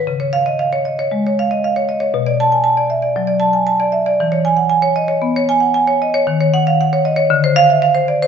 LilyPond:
\new Staff \with { instrumentName = "Marimba" } { \time 4/4 \key cis \mixolydian \tempo 4 = 116 << { r8 eis''8 r2. | r8 a''8 r2. | r8 gis''8 r2. | r8 fis''8 r4. f''8 r4 | } \\ { cis16 cis''8 dis''16 eis''16 cis''16 dis''16 cis''16 gis16 cis''16 eis''16 dis''16 eis''16 cis''16 dis''16 cis''16 | b,16 d''8 gis''16 a''16 d''16 e''16 d''16 fis16 d''16 a''16 gis''16 a''16 d''16 e''16 d''16 | e16 cis''8 fis''16 gis''16 cis''16 dis''16 cis''16 b16 cis''16 gis''16 fis''16 gis''16 cis''16 dis''16 cis''16 | dis16 cis''8 eis''16 fis''16 cis''16 dis''16 cis''16 d16 c''8 e''16 f''16 c''16 d''16 c''16 | } >> }